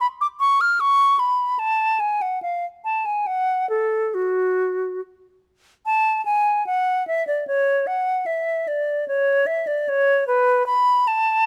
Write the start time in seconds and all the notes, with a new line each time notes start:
0.01 B5
0.21 D6
0.40 C#6
0.61 F6
0.80 C#6
1.19 B5
1.59 A5
2.00 G#5
2.22 F#5
2.42 F5
2.84 A5
3.06 G#5
3.27 F#5
3.70 A4
4.14 F#4
5.86 A5
6.25 G#5
6.67 F#5
7.08 E5
7.27 D5
7.47 C#5
7.87 F#5
8.26 E5
8.68 D5
9.08 C#5
9.47 E5
9.67 D5
9.89 C#5
10.28 B4
10.66 B5
11.07 A5